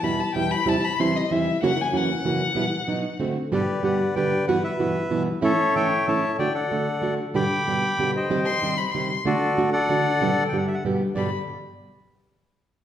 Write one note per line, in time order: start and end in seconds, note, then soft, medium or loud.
0.03 0.20 E2 medium
0.03 0.20 B2 medium
0.03 0.20 E3 medium
0.03 0.20 G3 medium
0.03 0.21 B3 medium
0.03 0.21 E4 medium
0.03 0.21 B5 medium
0.20 0.34 A5 medium
0.34 0.52 E2 medium
0.34 0.52 B2 medium
0.34 0.52 E3 medium
0.34 0.52 G3 medium
0.34 0.52 B3 medium
0.34 0.52 E4 medium
0.34 0.52 G5 medium
0.51 0.70 B5 medium
0.65 0.75 E2 medium
0.65 0.75 C3 medium
0.65 0.75 E3 medium
0.65 0.76 G3 medium
0.65 0.76 C4 medium
0.65 0.76 E4 medium
0.65 0.85 A5 loud
0.84 1.01 B5 medium
0.99 1.15 E2 medium
0.99 1.16 C3 medium
0.99 1.16 E3 medium
0.99 1.16 G3 medium
0.99 1.16 C4 medium
0.99 1.16 E4 medium
0.99 1.18 C6 medium
1.16 1.33 D#5 medium
1.30 1.47 E2 medium
1.30 1.47 C3 medium
1.30 1.47 E3 medium
1.30 1.47 G3 medium
1.30 1.47 C4 medium
1.30 1.48 E4 medium
1.30 1.62 E5 medium
1.62 1.71 F#2 medium
1.62 1.71 C#3 medium
1.62 1.71 E3 loud
1.62 1.71 A#3 loud
1.62 1.71 C#4 loud
1.62 1.71 F#4 loud
1.62 1.83 F#5 loud
1.82 1.98 G#5 medium
1.93 2.10 F#2 medium
1.93 2.10 C#3 medium
1.93 2.10 E3 medium
1.93 2.10 A#3 medium
1.93 2.10 C#4 medium
1.93 2.10 F#4 medium
1.93 3.22 F#5 medium
2.25 2.42 F#2 medium
2.25 2.41 C#3 medium
2.25 2.42 E3 medium
2.25 2.42 A#3 medium
2.25 2.42 C#4 medium
2.25 2.42 F#4 medium
2.55 2.65 B2 medium
2.55 2.65 E3 medium
2.55 2.65 G3 loud
2.55 2.65 B3 medium
2.55 2.65 E4 medium
2.88 3.05 B2 medium
2.88 3.05 F#3 medium
2.88 3.05 B3 medium
2.88 3.05 D#4 medium
2.88 3.05 F#4 medium
3.20 3.37 D3 medium
3.20 3.37 A3 medium
3.20 3.37 C4 medium
3.20 3.37 F#4 medium
3.52 3.61 G2 medium
3.52 3.61 B2 medium
3.52 3.61 D3 medium
3.52 3.61 G3 medium
3.52 3.61 B3 medium
3.52 3.62 G4 medium
3.52 3.97 G4 medium
3.52 3.84 B4 medium
3.52 3.83 D5 medium
3.82 4.00 G2 medium
3.82 4.00 B2 medium
3.82 4.00 D3 medium
3.82 4.00 G3 medium
3.82 4.01 B3 medium
3.82 4.01 G4 medium
3.82 4.15 B4 medium
3.82 4.15 D5 medium
3.82 4.14 F#5 medium
4.15 4.32 G2 medium
4.15 4.33 B2 medium
4.15 4.33 D3 medium
4.15 4.33 G3 medium
4.15 4.33 B3 medium
4.15 4.33 G4 medium
4.15 4.46 B4 medium
4.15 4.46 D5 medium
4.15 4.45 G5 medium
4.48 4.57 G2 medium
4.48 4.57 B2 medium
4.48 4.57 E3 loud
4.48 4.57 G3 medium
4.48 4.57 B3 medium
4.48 4.57 F#4 loud
4.48 4.63 B4 medium
4.48 4.62 F#5 medium
4.64 5.23 B4 medium
4.64 5.23 E5 medium
4.79 4.96 G2 medium
4.79 4.96 B2 medium
4.79 4.96 E3 medium
4.79 4.97 G3 medium
4.79 4.97 B3 medium
4.79 4.97 F#4 medium
5.10 5.27 G2 medium
5.10 5.27 B2 medium
5.10 5.28 E3 medium
5.10 5.28 G3 medium
5.10 5.28 B3 medium
5.10 5.28 F#4 medium
5.41 5.51 A2 medium
5.41 5.51 E3 loud
5.41 5.51 A3 medium
5.41 5.51 C#4 loud
5.41 5.51 E4 loud
5.41 5.88 A4 medium
5.41 5.75 C#5 medium
5.41 5.75 E5 loud
5.75 5.92 A2 medium
5.75 5.92 E3 medium
5.75 5.92 A3 medium
5.75 5.92 C#4 medium
5.75 5.92 E4 medium
5.75 6.06 C#5 medium
5.75 6.06 E5 medium
5.75 6.08 G5 loud
6.07 6.23 A2 medium
6.07 6.24 E3 medium
6.07 6.24 A3 medium
6.07 6.24 C#4 medium
6.07 6.24 E4 medium
6.07 6.37 C#5 medium
6.07 6.36 E5 medium
6.07 6.37 A5 medium
6.39 6.47 D3 medium
6.39 6.47 A3 medium
6.39 6.48 D4 medium
6.39 6.48 F#4 medium
6.39 6.54 D5 medium
6.39 6.53 G5 loud
6.54 7.14 A4 medium
6.54 7.14 D5 medium
6.54 7.14 F#5 medium
6.72 6.88 D3 medium
6.72 6.88 A3 medium
6.72 6.88 D4 medium
6.72 6.88 F#4 medium
7.02 7.19 D3 medium
7.02 7.19 A3 medium
7.02 7.19 D4 medium
7.02 7.19 F#4 medium
7.34 7.43 G2 medium
7.34 7.43 B2 medium
7.34 7.44 D3 medium
7.34 7.44 G3 medium
7.34 7.43 B3 loud
7.34 7.44 G4 medium
7.34 8.11 G5 medium
7.34 8.11 B5 medium
7.34 8.11 D6 loud
7.67 7.83 G2 medium
7.67 7.84 B2 medium
7.67 7.84 D3 medium
7.67 7.84 G3 medium
7.67 7.84 B3 medium
7.67 7.84 G4 medium
7.98 8.15 G2 medium
7.98 8.15 B2 medium
7.98 8.16 D3 medium
7.98 8.16 G3 medium
7.98 8.16 B3 medium
7.98 8.16 G4 medium
8.16 8.75 C5 medium
8.16 8.75 D#5 medium
8.16 8.76 G5 medium
8.29 8.39 C3 medium
8.29 8.39 D#3 medium
8.29 8.39 G3 medium
8.29 8.39 C4 medium
8.29 8.39 G4 loud
8.46 8.79 C6 loud
8.62 8.79 C3 medium
8.62 8.79 D#3 medium
8.62 8.79 G3 medium
8.62 8.79 C4 medium
8.62 8.80 G4 medium
8.78 8.93 B5 medium
8.91 9.11 C3 medium
8.91 9.11 D#3 medium
8.91 9.11 G3 medium
8.91 9.11 G4 medium
8.91 9.16 C6 medium
8.95 9.11 C4 medium
9.25 9.34 D3 medium
9.25 9.34 A3 medium
9.25 9.35 D4 medium
9.25 9.70 F#4 medium
9.25 9.35 F#4 loud
9.25 9.70 A4 medium
9.25 9.70 D5 loud
9.57 9.74 D3 medium
9.57 9.74 A3 medium
9.57 9.74 D4 medium
9.57 9.74 F#4 medium
9.73 10.44 A4 medium
9.73 10.44 D5 medium
9.73 10.43 F#5 loud
9.89 10.06 D3 medium
9.89 10.06 A3 medium
9.89 10.06 D4 medium
9.89 10.06 F#4 medium
10.21 10.29 G2 medium
10.21 10.30 B2 loud
10.21 10.30 D3 medium
10.21 10.30 G3 loud
10.21 10.30 B3 loud
10.21 10.30 G4 loud
10.48 10.69 G2 medium
10.48 10.69 B2 medium
10.48 10.57 G5 medium
10.52 10.69 D3 medium
10.52 10.69 G3 medium
10.52 10.69 B3 medium
10.52 10.70 G4 medium
10.58 10.66 F#5 medium
10.67 10.75 E5 medium
10.74 10.84 F#5 medium
10.84 11.01 G2 medium
10.84 11.01 B2 medium
10.84 11.01 D3 medium
10.84 11.01 G3 medium
10.84 11.02 B3 medium
10.84 11.02 G4 medium
11.15 11.28 G2 medium
11.15 11.29 B2 medium
11.15 11.29 D3 medium
11.15 11.29 G3 medium
11.15 11.29 B3 medium
11.15 11.30 G4 medium
11.15 11.30 D5 medium
11.15 11.32 B5 medium